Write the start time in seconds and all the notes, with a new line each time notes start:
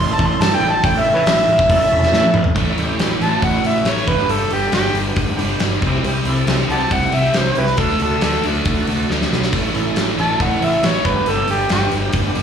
Already playing: A1 C#4 E4 A4
0.00 C6
0.14 A5
0.19 A1, kick
0.27 C6
0.39 G2 A5, snare, open hi-hat
0.55 G5
0.60 A1
0.71 A5
0.83 A1 C#4 E4 A4 G5, kick, open hi-hat
1.00 E5
1.15 B4 C#5 E5
1.26 A1, snare, open hi-hat
1.48 A1
1.59 kick
1.68 A1 C#4 E4 A4, kick, open hi-hat
1.91 E1
2.03 snare
2.12 A2, snare
2.23 high tom
2.34 A1, mid tom
2.44 floor tom
2.54 A1 A2 E3 A3 C#4 E4 A4, kick, open hi-hat
2.77 A1 C#4 E4 G4, open hi-hat
2.99 A1, snare, open hi-hat
3.20 A1 A2 E3 A3 C#4 E4 F#4 A5, open hi-hat
3.42 A1 F#5, kick, open hi-hat
3.64 A1 E5, open hi-hat
3.85 A1 A2 E3 A3 C#5, snare, open hi-hat
4.06 G1 G2 D3 B3 D4 G4 B4, kick, open hi-hat
4.10 G3
4.28 G1 A4, open hi-hat
4.50 G1 B3 D4 G4 A4, open hi-hat
4.71 G1 G2 D3 G3 G4, snare, open hi-hat
4.94 G1 B3 D4 G4, open hi-hat
5.16 G1, kick, open hi-hat
5.37 G1 G2 D3 G3, open hi-hat
5.60 G1, snare, open hi-hat
5.80 C2 C3 G3 C4, kick, open hi-hat
5.84 C4 E4 G4
6.04 C2, open hi-hat
6.25 C2 C4 E4, open hi-hat
6.29 A4
6.46 C2 C3 G3, snare, open hi-hat
6.50 C4
6.68 C2 C4 E4 D5 F#5 A5, open hi-hat
6.74 G4
6.91 C2 F#5, kick, open hi-hat
7.12 C2 C3 G3 C4 E5, open hi-hat
7.34 C2 C5, snare, open hi-hat
7.55 C2 E4 G4 B4, open hi-hat
7.67 snare
7.77 D2 D3 A3 D4 F#4 A4, kick, open hi-hat
7.81 A4
8.00 D2 D4 A4, open hi-hat
8.04 F#4 A4
8.21 D2 A4, snare, open hi-hat
8.42 D2 A3 D4, open hi-hat
8.46 D3 D4 F#4 A4
8.65 D2, kick, open hi-hat
8.87 D2, open hi-hat
9.08 D2 D3 A3 D4, snare
9.22 snare
9.31 B1, snare
9.43 snare
9.51 A1 A2 E3 A3 C#4 E4 A4, kick, open hi-hat, splash
9.74 A1 C#4 E4 A4, open hi-hat
9.96 A1, snare, open hi-hat
10.17 A1 A2 E3 A3 C#4 E4 A4, open hi-hat
10.21 A5
10.40 A1 F#5, kick, open hi-hat
10.62 A1 E5, open hi-hat
10.83 A1 A2 E3 A3 C#5, snare, open hi-hat
11.03 G1 G2 D3 B3 D4 G4 B4, kick, open hi-hat
11.07 G3
11.26 G1, open hi-hat
11.30 A4
11.48 G1 B3 D4 G4 A4, open hi-hat
11.69 G1 G2 D3 G3 G4, snare, open hi-hat
11.90 G1 B3 D4 G4, open hi-hat
12.13 G1, kick, open hi-hat
12.34 G1 D3 G3, open hi-hat
12.38 G2